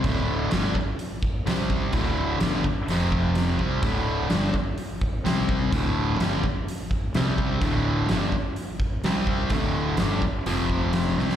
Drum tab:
HH |o---o---o---o---|o---o---o---o---|o---o---o---o---|o---o---o---o---|
SD |----o-------o---|----o-------o---|----o-------o---|----o-------o---|
BD |o-----o---o---o-|o-----o---o---o-|o-----o---o---o-|o-----o---o---o-|

HH |o---o---o---o---|o---o---o---o---|
SD |----o-------o---|----o-------o-oo|
BD |o-----o---o---o-|o-----o---o-----|